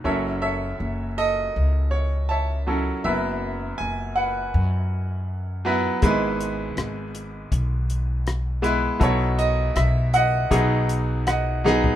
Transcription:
0.04 F#1 F#2 F#3 C#4 E4 A4 C#5 E5
0.42 A4 C#5 E5
0.80 F#1
1.18 A4 D#5
1.56 C#2
1.91 C#5
2.29 C#5 E5 A5
2.67 F#3 C#4 E4 A4
3.04 F#1 F#2 F#3 B3 E4 B4 E5
3.78 F#1 G#5
4.16 B4 F#5
4.54 F#2
5.65 F#3 B3 E4 B4
6.02 G#1 G#2 G#3 B3 E4 B4, kick, closed hi-hat
6.41 closed hi-hat
6.77 G#1, cross-stick, closed hi-hat
7.15 closed hi-hat
7.52 B1, kick, closed hi-hat
7.90 closed hi-hat
8.27 cross-stick, closed hi-hat
8.62 G#3 B3 E4 B4, closed hi-hat
9.00 B1 B2 F#3 B3 E4 A4 C#5, kick, closed hi-hat
9.39 D#5, closed hi-hat
9.76 B1 E5, cross-stick, closed hi-hat
10.14 D#5 F#5, closed hi-hat
10.51 B1 B2 F#3 B3 D#4 G#4, kick, closed hi-hat
10.89 closed hi-hat
11.27 D#5 F#5, cross-stick, closed hi-hat
11.64 F#3 B3 D#4 G#4, snare
11.84 floor tom

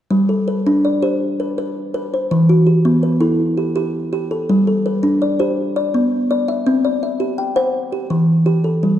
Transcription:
0.10 G3
0.29 A4
0.48 B4
0.66 D4
0.85 D5
1.02 G4 C5
1.40 B4
1.58 B4
1.94 B4
2.14 C5
2.31 E3
2.49 F#4
2.67 G4
2.85 B3
3.03 B4
3.21 E4 A4
3.57 G4
3.76 G4
4.13 G4
4.31 A4
4.49 G3
4.67 A4
4.86 B4
5.03 D4
5.22 D5
5.39 G4 C5
5.76 D5
5.94 B3
6.31 D5
6.48 E5
6.67 C4
6.85 D5
7.03 E5
7.20 G4
7.38 G5
7.56 C5 F#5
7.92 G4
8.10 E3
8.46 G4
8.64 A4
8.83 G3

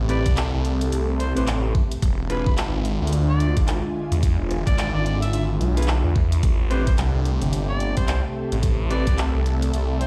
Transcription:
Already playing: C3 A3 C4 G4 A4 E5 A5
0.00 A1
0.09 C4 E4 G4 B4 D5, cross-stick, closed hi-hat
0.26 C2, kick, closed hi-hat
0.37 clap, closed hi-hat
0.54 C2
0.65 closed hi-hat
0.81 closed hi-hat
0.92 C2, closed hi-hat
1.20 C5, closed hi-hat
1.35 A1 C4 E4 G4 B4 C5, closed hi-hat
1.48 clap, closed hi-hat
1.75 kick
1.92 closed hi-hat
2.02 E1 D3 G#3 D4 F4, kick, closed hi-hat
2.29 D4 F4 G#4 B4, cross-stick, closed hi-hat
2.46 F4 B4, kick
2.58 G#1, clap, closed hi-hat
2.74 G#1
2.85 closed hi-hat
2.95 G#5
3.02 D2
3.07 closed hi-hat
3.13 closed hi-hat
3.30 D5
3.40 closed hi-hat
3.57 G#1, kick, closed hi-hat
3.68 clap, closed hi-hat
4.12 E2, closed hi-hat
4.23 kick, closed hi-hat
4.39 E1
4.51 cross-stick, closed hi-hat
4.67 G#1 D5, kick, closed hi-hat
4.78 D5, clap, closed hi-hat
4.94 G#1 D5
5.06 D5, closed hi-hat
5.22 E5, closed hi-hat
5.33 G#1 E5, closed hi-hat
5.60 B1, closed hi-hat
5.76 D4 F4 G#4 B4, closed hi-hat
5.82 closed hi-hat
5.88 clap
6.04 E2
6.16 kick
6.32 closed hi-hat
6.43 A1 C3 A3 C4 G4, kick, closed hi-hat
6.70 C4 E4 G4 B4 C5, cross-stick, closed hi-hat
6.87 C5, kick, closed hi-hat
6.98 C2, clap, closed hi-hat
7.04 G4
7.15 C2 A5
7.25 closed hi-hat
7.42 G1, closed hi-hat
7.53 closed hi-hat
7.69 D5
7.80 closed hi-hat
7.96 C2 C5, kick, closed hi-hat
8.08 clap, closed hi-hat
8.52 A1, closed hi-hat
8.63 A4, kick, closed hi-hat
8.79 A1
8.90 C4 E4 G4 B4 D5, cross-stick, closed hi-hat
9.07 C2, kick, closed hi-hat
9.18 clap, closed hi-hat
9.35 C2
9.46 closed hi-hat
9.62 closed hi-hat
9.73 C2, closed hi-hat
10.01 C5, closed hi-hat

